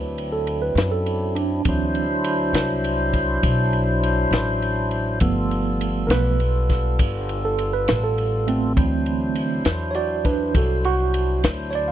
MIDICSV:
0, 0, Header, 1, 5, 480
1, 0, Start_track
1, 0, Tempo, 592300
1, 1345, Time_signature, 12, 3, 24, 8
1, 9659, End_track
2, 0, Start_track
2, 0, Title_t, "Tine electric piano"
2, 0, Program_c, 0, 4
2, 0, Note_on_c, 0, 71, 73
2, 242, Note_off_c, 0, 71, 0
2, 263, Note_on_c, 0, 69, 57
2, 496, Note_off_c, 0, 69, 0
2, 502, Note_on_c, 0, 71, 55
2, 736, Note_off_c, 0, 71, 0
2, 742, Note_on_c, 0, 69, 61
2, 1093, Note_off_c, 0, 69, 0
2, 1098, Note_on_c, 0, 62, 60
2, 1339, Note_on_c, 0, 54, 36
2, 1340, Note_on_c, 0, 52, 40
2, 1352, Note_on_c, 0, 60, 44
2, 1661, Note_off_c, 0, 54, 0
2, 1662, Note_off_c, 0, 52, 0
2, 1668, Note_off_c, 0, 60, 0
2, 2033, Note_off_c, 0, 62, 0
2, 4220, Note_on_c, 0, 53, 46
2, 4228, Note_on_c, 0, 57, 42
2, 4232, Note_on_c, 0, 59, 45
2, 4911, Note_off_c, 0, 53, 0
2, 4915, Note_off_c, 0, 57, 0
2, 4917, Note_off_c, 0, 59, 0
2, 4919, Note_on_c, 0, 70, 59
2, 4938, Note_on_c, 0, 53, 37
2, 4939, Note_on_c, 0, 57, 39
2, 4942, Note_on_c, 0, 59, 45
2, 4947, Note_off_c, 0, 70, 0
2, 4952, Note_on_c, 0, 71, 83
2, 5158, Note_off_c, 0, 53, 0
2, 5159, Note_off_c, 0, 57, 0
2, 5160, Note_off_c, 0, 59, 0
2, 5997, Note_off_c, 0, 71, 0
2, 6038, Note_on_c, 0, 69, 72
2, 6265, Note_off_c, 0, 69, 0
2, 6267, Note_on_c, 0, 71, 73
2, 6499, Note_off_c, 0, 71, 0
2, 6514, Note_on_c, 0, 69, 67
2, 6859, Note_off_c, 0, 69, 0
2, 6867, Note_on_c, 0, 57, 59
2, 6875, Note_on_c, 0, 60, 69
2, 7102, Note_off_c, 0, 60, 0
2, 7103, Note_on_c, 0, 52, 43
2, 7106, Note_on_c, 0, 54, 41
2, 7112, Note_on_c, 0, 60, 49
2, 7792, Note_off_c, 0, 52, 0
2, 7793, Note_off_c, 0, 54, 0
2, 7794, Note_off_c, 0, 57, 0
2, 7796, Note_off_c, 0, 60, 0
2, 8030, Note_on_c, 0, 73, 59
2, 8060, Note_off_c, 0, 73, 0
2, 8066, Note_on_c, 0, 66, 63
2, 8068, Note_on_c, 0, 74, 76
2, 8289, Note_off_c, 0, 66, 0
2, 8299, Note_off_c, 0, 74, 0
2, 8308, Note_on_c, 0, 71, 59
2, 8311, Note_on_c, 0, 62, 62
2, 8531, Note_off_c, 0, 62, 0
2, 8540, Note_off_c, 0, 71, 0
2, 8561, Note_on_c, 0, 66, 52
2, 8566, Note_on_c, 0, 69, 58
2, 8777, Note_off_c, 0, 66, 0
2, 8789, Note_off_c, 0, 69, 0
2, 8796, Note_on_c, 0, 66, 78
2, 9256, Note_off_c, 0, 66, 0
2, 9486, Note_on_c, 0, 73, 55
2, 9513, Note_off_c, 0, 73, 0
2, 9524, Note_on_c, 0, 74, 74
2, 9626, Note_on_c, 0, 77, 48
2, 9627, Note_off_c, 0, 74, 0
2, 9659, Note_off_c, 0, 77, 0
2, 9659, End_track
3, 0, Start_track
3, 0, Title_t, "Tonewheel organ"
3, 0, Program_c, 1, 16
3, 0, Note_on_c, 1, 54, 57
3, 0, Note_on_c, 1, 60, 58
3, 0, Note_on_c, 1, 62, 57
3, 0, Note_on_c, 1, 64, 60
3, 1314, Note_off_c, 1, 64, 0
3, 1317, Note_off_c, 1, 54, 0
3, 1318, Note_off_c, 1, 60, 0
3, 1322, Note_off_c, 1, 62, 0
3, 1365, Note_on_c, 1, 54, 61
3, 1367, Note_on_c, 1, 64, 59
3, 1367, Note_on_c, 1, 72, 68
3, 1368, Note_on_c, 1, 62, 57
3, 4208, Note_off_c, 1, 54, 0
3, 4209, Note_off_c, 1, 62, 0
3, 4209, Note_off_c, 1, 64, 0
3, 4209, Note_off_c, 1, 72, 0
3, 4218, Note_on_c, 1, 65, 60
3, 4219, Note_on_c, 1, 55, 63
3, 4220, Note_on_c, 1, 59, 59
3, 4220, Note_on_c, 1, 69, 63
3, 7073, Note_off_c, 1, 65, 0
3, 7074, Note_off_c, 1, 55, 0
3, 7074, Note_off_c, 1, 59, 0
3, 7074, Note_off_c, 1, 69, 0
3, 7103, Note_on_c, 1, 54, 56
3, 7106, Note_on_c, 1, 64, 66
3, 7107, Note_on_c, 1, 62, 63
3, 7108, Note_on_c, 1, 72, 68
3, 9659, Note_off_c, 1, 54, 0
3, 9659, Note_off_c, 1, 62, 0
3, 9659, Note_off_c, 1, 64, 0
3, 9659, Note_off_c, 1, 72, 0
3, 9659, End_track
4, 0, Start_track
4, 0, Title_t, "Upright bass"
4, 0, Program_c, 2, 32
4, 0, Note_on_c, 2, 38, 72
4, 602, Note_off_c, 2, 38, 0
4, 609, Note_on_c, 2, 42, 87
4, 1316, Note_off_c, 2, 42, 0
4, 1345, Note_on_c, 2, 38, 74
4, 2044, Note_off_c, 2, 38, 0
4, 2051, Note_on_c, 2, 36, 88
4, 2757, Note_off_c, 2, 36, 0
4, 2787, Note_on_c, 2, 35, 74
4, 3485, Note_off_c, 2, 35, 0
4, 3491, Note_on_c, 2, 33, 88
4, 4197, Note_off_c, 2, 33, 0
4, 4229, Note_on_c, 2, 31, 84
4, 4926, Note_off_c, 2, 31, 0
4, 4931, Note_on_c, 2, 35, 80
4, 5637, Note_off_c, 2, 35, 0
4, 5669, Note_on_c, 2, 31, 90
4, 6366, Note_off_c, 2, 31, 0
4, 6396, Note_on_c, 2, 33, 96
4, 7089, Note_off_c, 2, 33, 0
4, 7102, Note_on_c, 2, 38, 82
4, 7802, Note_off_c, 2, 38, 0
4, 7823, Note_on_c, 2, 40, 73
4, 8522, Note_off_c, 2, 40, 0
4, 8547, Note_on_c, 2, 36, 79
4, 9244, Note_off_c, 2, 36, 0
4, 9267, Note_on_c, 2, 38, 94
4, 9659, Note_off_c, 2, 38, 0
4, 9659, End_track
5, 0, Start_track
5, 0, Title_t, "Drums"
5, 146, Note_on_c, 9, 51, 58
5, 227, Note_off_c, 9, 51, 0
5, 380, Note_on_c, 9, 51, 56
5, 461, Note_off_c, 9, 51, 0
5, 626, Note_on_c, 9, 51, 71
5, 634, Note_on_c, 9, 38, 102
5, 707, Note_off_c, 9, 51, 0
5, 716, Note_off_c, 9, 38, 0
5, 861, Note_on_c, 9, 51, 58
5, 942, Note_off_c, 9, 51, 0
5, 1103, Note_on_c, 9, 51, 53
5, 1184, Note_off_c, 9, 51, 0
5, 1336, Note_on_c, 9, 51, 76
5, 1341, Note_on_c, 9, 36, 91
5, 1417, Note_off_c, 9, 51, 0
5, 1422, Note_off_c, 9, 36, 0
5, 1578, Note_on_c, 9, 51, 55
5, 1659, Note_off_c, 9, 51, 0
5, 1817, Note_on_c, 9, 51, 68
5, 1898, Note_off_c, 9, 51, 0
5, 2061, Note_on_c, 9, 51, 82
5, 2069, Note_on_c, 9, 38, 92
5, 2142, Note_off_c, 9, 51, 0
5, 2150, Note_off_c, 9, 38, 0
5, 2303, Note_on_c, 9, 51, 63
5, 2384, Note_off_c, 9, 51, 0
5, 2538, Note_on_c, 9, 51, 54
5, 2542, Note_on_c, 9, 36, 70
5, 2619, Note_off_c, 9, 51, 0
5, 2623, Note_off_c, 9, 36, 0
5, 2780, Note_on_c, 9, 51, 84
5, 2782, Note_on_c, 9, 36, 83
5, 2861, Note_off_c, 9, 51, 0
5, 2863, Note_off_c, 9, 36, 0
5, 3021, Note_on_c, 9, 51, 53
5, 3102, Note_off_c, 9, 51, 0
5, 3268, Note_on_c, 9, 51, 59
5, 3349, Note_off_c, 9, 51, 0
5, 3505, Note_on_c, 9, 51, 77
5, 3513, Note_on_c, 9, 38, 104
5, 3586, Note_off_c, 9, 51, 0
5, 3594, Note_off_c, 9, 38, 0
5, 3746, Note_on_c, 9, 51, 59
5, 3827, Note_off_c, 9, 51, 0
5, 3978, Note_on_c, 9, 51, 47
5, 4059, Note_off_c, 9, 51, 0
5, 4215, Note_on_c, 9, 51, 66
5, 4224, Note_on_c, 9, 36, 101
5, 4296, Note_off_c, 9, 51, 0
5, 4305, Note_off_c, 9, 36, 0
5, 4466, Note_on_c, 9, 51, 54
5, 4547, Note_off_c, 9, 51, 0
5, 4706, Note_on_c, 9, 51, 69
5, 4787, Note_off_c, 9, 51, 0
5, 4942, Note_on_c, 9, 51, 82
5, 4950, Note_on_c, 9, 38, 100
5, 5023, Note_off_c, 9, 51, 0
5, 5032, Note_off_c, 9, 38, 0
5, 5185, Note_on_c, 9, 51, 61
5, 5266, Note_off_c, 9, 51, 0
5, 5424, Note_on_c, 9, 51, 57
5, 5427, Note_on_c, 9, 36, 72
5, 5432, Note_on_c, 9, 38, 32
5, 5505, Note_off_c, 9, 51, 0
5, 5508, Note_off_c, 9, 36, 0
5, 5513, Note_off_c, 9, 38, 0
5, 5665, Note_on_c, 9, 51, 93
5, 5667, Note_on_c, 9, 36, 83
5, 5746, Note_off_c, 9, 51, 0
5, 5748, Note_off_c, 9, 36, 0
5, 5908, Note_on_c, 9, 51, 61
5, 5989, Note_off_c, 9, 51, 0
5, 6146, Note_on_c, 9, 51, 59
5, 6227, Note_off_c, 9, 51, 0
5, 6384, Note_on_c, 9, 51, 83
5, 6392, Note_on_c, 9, 38, 98
5, 6465, Note_off_c, 9, 51, 0
5, 6473, Note_off_c, 9, 38, 0
5, 6628, Note_on_c, 9, 51, 56
5, 6709, Note_off_c, 9, 51, 0
5, 6870, Note_on_c, 9, 51, 56
5, 6951, Note_off_c, 9, 51, 0
5, 7106, Note_on_c, 9, 36, 91
5, 7108, Note_on_c, 9, 51, 72
5, 7187, Note_off_c, 9, 36, 0
5, 7189, Note_off_c, 9, 51, 0
5, 7342, Note_on_c, 9, 51, 56
5, 7423, Note_off_c, 9, 51, 0
5, 7580, Note_on_c, 9, 51, 67
5, 7661, Note_off_c, 9, 51, 0
5, 7819, Note_on_c, 9, 51, 73
5, 7827, Note_on_c, 9, 38, 108
5, 7900, Note_off_c, 9, 51, 0
5, 7908, Note_off_c, 9, 38, 0
5, 8059, Note_on_c, 9, 51, 60
5, 8140, Note_off_c, 9, 51, 0
5, 8304, Note_on_c, 9, 51, 56
5, 8305, Note_on_c, 9, 36, 67
5, 8385, Note_off_c, 9, 51, 0
5, 8386, Note_off_c, 9, 36, 0
5, 8547, Note_on_c, 9, 36, 83
5, 8547, Note_on_c, 9, 51, 82
5, 8628, Note_off_c, 9, 36, 0
5, 8628, Note_off_c, 9, 51, 0
5, 8787, Note_on_c, 9, 51, 53
5, 8868, Note_off_c, 9, 51, 0
5, 9026, Note_on_c, 9, 51, 60
5, 9107, Note_off_c, 9, 51, 0
5, 9267, Note_on_c, 9, 51, 85
5, 9276, Note_on_c, 9, 38, 103
5, 9349, Note_off_c, 9, 51, 0
5, 9357, Note_off_c, 9, 38, 0
5, 9502, Note_on_c, 9, 51, 55
5, 9583, Note_off_c, 9, 51, 0
5, 9659, End_track
0, 0, End_of_file